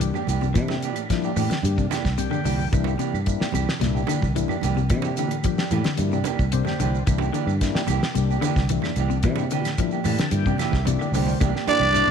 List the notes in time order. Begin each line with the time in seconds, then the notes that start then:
Already playing: C2
0.00 E3 G3 A#3 D4 G4, closed hi-hat, shekere
0.14 A#3 D4 G4, high conga, claves, shekere
0.27 C2 E3 A#3 D4 G4, closed hi-hat, high conga, shekere
0.41 C3, high conga, shekere
0.54 C3 E3 G3 A#3 D4 E4, kick, closed hi-hat, claves, shekere
0.68 A#3 D4 G4, snare, high conga, shekere
0.82 E3 A#3 D4 G4, closed hi-hat, shekere
0.95 A2, closed hi-hat, claves, shekere
1.10 F3 G3 A#3 D4 E4, kick, snare, closed hi-hat, shekere
1.23 A#3 D4 G4, shekere
1.36 A2 E3 A#3 D4 G4, open hi-hat, high conga, claves, shekere
1.50 D3, muted fingered electric bass stroke, snare, closed hi-hat, shekere
1.62 G2 G3 A#3 D4 G4, closed hi-hat, high conga, shekere
1.78 C3 A#3 D4, kick, shekere
1.90 E3 A#3 D4 G4, snare, closed hi-hat, high conga, claves, shekere
2.04 C2, kick, snare, shekere
2.17 C3 G3 A#3 D4 G4 G5, closed hi-hat, shekere
2.31 D3 A#3 D4 G4, high conga, claves, shekere
2.44 C2 D3 E3 A#3 D4 G4, open hi-hat, high conga, shekere
2.58 high conga, shekere
2.72 C2 E3 G3 A#3 D4 E4, kick, closed hi-hat, claves, shekere
2.84 A#3 D4 G4, high conga, shekere
2.99 C3 E3 A#3 D4 G4, closed hi-hat, shekere
3.14 G2, claves, shekere
3.26 G3 A#3 D4 E4, kick, closed hi-hat, shekere
3.40 A#3 D4 G4, muted fingered electric bass stroke, snare, shekere
3.52 C2 C3 E3 D4 G4, closed hi-hat, high conga, claves, shekere
3.69 snare, shekere
3.80 C2 A#2 G3 A#3 D4 E4, snare, closed hi-hat, high conga, shekere
3.95 A#3 D4 G4, shekere
4.07 D3 E3 A#3 D4 G4, closed hi-hat, high conga, claves, shekere
4.22 C2, kick, shekere
4.35 E3 G3 A#3 D4 E4, closed hi-hat, shekere
4.48 A#3 D4 G4, high conga, claves, shekere
4.61 C2 E3 A#3 D4 G4, closed hi-hat, high conga, shekere
4.75 C3, high conga, shekere
4.90 C3 E3 G3 A#3 D4 E4, kick, closed hi-hat, claves, shekere
5.02 A#3 D4 G4, high conga, shekere
5.17 D3 E3 A#3 D4 G4, closed hi-hat, shekere
5.30 A2, closed hi-hat, claves, shekere
5.42 F3 G3 A#3 D4 G4, kick, closed hi-hat, shekere
5.58 D4 G4, snare, shekere
5.71 A2 E3 A#3 D4 G4, closed hi-hat, high conga, claves, shekere
5.84 D3, muted fingered electric bass stroke, snare, closed hi-hat, shekere
5.96 G2 G3 A#3 D4 E4, closed hi-hat, high conga, shekere
6.12 C3 A#3 D4 G4, shekere
6.24 E3 A#3 D4 G4, closed hi-hat, high conga, claves, shekere
6.39 C2, kick, shekere
6.52 C3 G3 A#3 D4 G4 C5, closed hi-hat, shekere
6.65 D3 A#3 D4 G4, snare, high conga, claves, shekere
6.80 C2 D3 E3 A#3 D4 G4, closed hi-hat, high conga, shekere
6.95 shekere
7.07 C2 E3 G3 A#3 D4 E4, kick, closed hi-hat, claves, shekere
7.18 A#3 D4 G4, high conga, shekere
7.33 D3 E3 A#3 D4 G4, closed hi-hat, shekere
7.47 G2, claves, shekere
7.60 G3 A#3 D4 E4, kick, snare, closed hi-hat, shekere
7.75 A#3 D4 G4, muted fingered electric bass stroke, snare, shekere
7.87 C2 C3 E3 A#3 G4, closed hi-hat, high conga, claves, shekere
8.03 snare, shekere
8.15 C2 C3 G3 A#3 D4 G4, closed hi-hat, shekere
8.31 A#3 D4 G4, shekere
8.41 D3 E3 A#3 D4 G4, closed hi-hat, high conga, claves, shekere
8.56 C2, kick, snare, shekere
8.69 E3 G3 A#3 D4 E4, closed hi-hat, shekere
8.82 A#3 D4, snare, high conga, claves, shekere
8.96 C2 E3 A#3 D4 G4, closed hi-hat, high conga, shekere
9.10 C3, shekere
9.23 C3 E3 G3 A#3 D4 E4, kick, closed hi-hat, claves, shekere
9.36 A#3 D4 G4, high conga, shekere
9.51 D3 E3 A#3 D4 G4, closed hi-hat, shekere
9.64 A2, snare, closed hi-hat, claves, shekere
9.77 F3 G3 A#3 D4 E4, kick, closed hi-hat, shekere
9.91 A#3 D4 G4, shekere
10.04 A2 E3 A#3 D4 G4 A5, open hi-hat, high conga, claves, shekere
10.18 D3, muted fingered electric bass stroke, snare, closed hi-hat, shekere
10.30 G2 G3 A#3 D4 E4 G5, closed hi-hat, shekere
10.46 C3 A#3 D4 G4, kick, shekere
10.58 E3 A#3 D4 G4 E5, snare, closed hi-hat, high conga, claves, shekere
10.71 C2, kick, snare, high conga, shekere
10.85 C3 G3 A#3 D4 E4 D5, closed hi-hat, high conga, shekere
10.99 D3 A#3 D4 G4, claves, shekere
11.12 C2 D3 E3 A#3 D4 G4 C5, open hi-hat, low conga, shekere
11.26 low conga, shekere
11.40 C2 E3 G3 A#3 D4 E4 G4, muted clean electric guitar stroke, kick, closed hi-hat, low conga, claves, shekere
11.55 A#3 D4 G4, snare
11.67 E3 G3 A#3 D4 E4 G4 D5, muted fingered electric bass stroke, closed hi-hat, high conga, shekere
11.80 C2, high conga, claves
11.92 G3 A#3 D4 E4, closed hi-hat, shekere
12.07 A#1